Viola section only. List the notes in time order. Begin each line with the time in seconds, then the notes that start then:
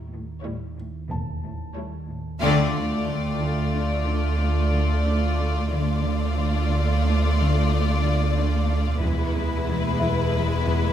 Already playing: G3 E4
0.44 G3 E4
1.75 G3 E4
2.41 A3
5.72 A3
9.02 G#3